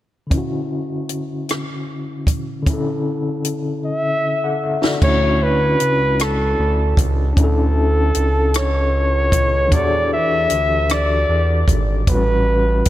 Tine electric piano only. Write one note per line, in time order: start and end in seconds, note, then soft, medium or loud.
0.27 2.60 D3 soft
0.27 2.62 C#4 soft
0.34 2.64 E4 soft
0.34 2.66 F#4 medium
2.63 4.96 D3 medium
2.63 4.98 C#4 soft
2.70 4.99 E4 medium
2.70 3.85 A4 medium
4.44 4.63 A4 soft
4.44 4.62 F#5 medium
4.64 4.82 E5 medium
4.83 5.07 F#4 soft
4.83 5.20 D5 medium
4.98 7.33 C#4 soft
4.98 7.31 D4 medium
5.05 7.35 E4 soft
5.05 7.36 F#4 medium
7.33 9.68 C#4 soft
7.33 9.66 D4 medium
7.40 9.70 E4 soft
7.40 9.72 A4 medium
9.68 12.02 E3 soft
9.68 12.03 D4 medium
9.73 12.04 F#4 soft
9.73 12.05 G4 soft
9.78 12.07 A4 medium
12.04 12.89 A2 soft
12.04 12.89 G3 medium
12.09 12.15 C4 soft
12.09 12.89 F#4 soft
12.14 12.89 C#4 soft
12.14 12.89 B4 medium